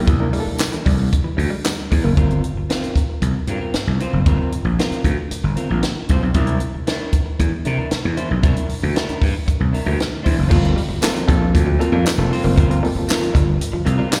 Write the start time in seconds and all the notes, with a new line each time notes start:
Already playing: A#3 D4 E4 G4
0.07 C2 E3, kick, closed hi-hat
0.20 A#3 D4 E4 A#4
0.33 G3 A#3 D4 E4 G#4, open hi-hat
0.40 A4
0.46 muted clean electric guitar stroke, muted slap bass stroke
0.58 muted clean electric guitar stroke, snare, clap, closed hi-hat, tambourine
0.72 E3, closed hi-hat
0.86 C2 G3, kick, open hi-hat
1.12 kick, closed hi-hat
1.24 E3, muted slap bass stroke
1.37 D2, muted clean electric guitar stroke, open hi-hat
1.50 G3
1.65 G3, snare, clap, closed hi-hat, tambourine
1.91 E2, muted clean electric guitar stroke, kick, open hi-hat
2.04 F#1 A#3
2.17 G1 C4 F4 A#4, kick, closed hi-hat
2.31 closed hi-hat
2.44 closed hi-hat
2.56 muted slap bass stroke, muted clean electric guitar stroke
2.69 C4 F4 A#4, snare, closed hi-hat
2.83 closed hi-hat
2.96 muted clean electric guitar stroke, kick, closed hi-hat
3.10 muted clean electric guitar stroke
3.22 C2, muted clean electric guitar stroke, kick, closed hi-hat
3.36 muted clean electric guitar stroke
3.47 G2 C4 F4 A#4, closed hi-hat
3.61 C4 F4 A#4
3.74 muted clean electric guitar stroke, muted slap bass stroke, snare, closed hi-hat
3.87 C2, muted clean electric guitar stroke
4.00 C4 F4 C5, closed hi-hat
4.13 F#1, muted clean electric guitar stroke
4.26 G1 C4 F4 A#4, kick, closed hi-hat
4.52 closed hi-hat
4.65 A#1, muted clean electric guitar stroke
4.79 C4 F4 A#4, snare, closed hi-hat
4.91 muted slap bass stroke, closed hi-hat
5.04 D2, kick, closed hi-hat
5.18 muted clean electric guitar stroke
5.31 muted clean electric guitar stroke, muted slap bass stroke, closed hi-hat
5.44 G1, muted clean electric guitar stroke
5.56 C4 F4 A#4, closed hi-hat
5.70 A#1 C4 F4 A#4
5.83 muted clean electric guitar stroke, snare, closed hi-hat
5.96 muted clean electric guitar stroke
6.09 C2 C4 F4 C5, kick, closed hi-hat
6.23 B1, muted clean electric guitar stroke
6.34 C2 D4 E4 A#4, kick, closed hi-hat
6.47 closed hi-hat
6.60 closed hi-hat
6.74 muted clean electric guitar stroke, muted slap bass stroke
6.87 D4 E4 A#4, snare, closed hi-hat
7.13 muted clean electric guitar stroke, kick, closed hi-hat
7.26 muted clean electric guitar stroke
7.40 E2, muted clean electric guitar stroke, kick, closed hi-hat
7.52 muted clean electric guitar stroke
7.65 C3 D4 E4 A#4, closed hi-hat
7.79 D4 E4 A#4
7.91 muted clean electric guitar stroke, muted slap bass stroke, snare, closed hi-hat
8.04 E2, muted clean electric guitar stroke
8.17 D4 E4 C5, closed hi-hat
8.30 B1, muted clean electric guitar stroke
8.43 C2 D4 E4 A#4, kick, closed hi-hat
8.56 closed hi-hat
8.69 open hi-hat
8.83 D2, muted clean electric guitar stroke
8.95 D4 E4 A#4, snare, closed hi-hat
9.09 muted slap bass stroke, closed hi-hat
9.21 G2, muted clean electric guitar stroke, kick, open hi-hat
9.34 muted clean electric guitar stroke
9.46 muted clean electric guitar stroke, muted slap bass stroke, kick, closed hi-hat
9.60 C2, muted clean electric guitar stroke
9.73 D4 E4 A#4, open hi-hat
9.85 D2 D4 E4 A#4
9.98 muted clean electric guitar stroke, snare, closed hi-hat
10.11 muted clean electric guitar stroke
10.23 E2 D4 E4 C5, kick, open hi-hat
10.37 F#1, muted clean electric guitar stroke
10.49 G1 F3 A#3 C4 F4 A4 A#4, kick, crash
10.65 closed hi-hat
10.76 G3, open hi-hat
10.89 muted clean electric guitar stroke, muted slap bass stroke
11.02 A#3 C4 F4 A4 A#4, muted clean electric guitar stroke, snare, clap, closed hi-hat, tambourine
11.15 F3, closed hi-hat
11.28 A#1 G3 A#3 C4 F4 A4, muted clean electric guitar stroke, kick, closed hi-hat
11.41 muted clean electric guitar stroke
11.53 D2, muted clean electric guitar stroke, kick, closed hi-hat
11.66 F3, muted clean electric guitar stroke
11.79 A#3 C4 F4 A4 A#4, muted clean electric guitar stroke, closed hi-hat
11.92 F2 G3 C4 F4 A#4
12.05 G3, muted slap bass stroke, muted clean electric guitar stroke, snare, clap, closed hi-hat, tambourine
12.18 F1 A#3 C4 F4 A4, muted clean electric guitar stroke
12.31 C4 F4 C5, muted clean electric guitar stroke, open hi-hat
12.44 F#1 A#3 C4 F4 C5, muted clean electric guitar stroke
12.57 G1 F3 C4 F4 A#4, kick, closed hi-hat
12.70 A#3 C4 F4 A#4, closed hi-hat
12.83 G3 A#3 C4 F4 A4, open hi-hat
12.96 muted slap bass stroke, muted clean electric guitar stroke
13.08 C4 F4 A#4, muted clean electric guitar stroke, snare, clap, closed hi-hat, tambourine
13.21 F3, closed hi-hat
13.34 G1 G3, muted clean electric guitar stroke, kick, closed hi-hat
13.47 muted clean electric guitar stroke
13.60 muted clean electric guitar stroke, closed hi-hat
13.73 F3, muted clean electric guitar stroke, muted slap bass stroke
13.85 C2 C4 F4 A#4, muted clean electric guitar stroke, closed hi-hat
13.98 G3 C4 F4 A#4
14.11 G3 D5 F5, muted clean electric guitar stroke, snare, clap, closed hi-hat, tambourine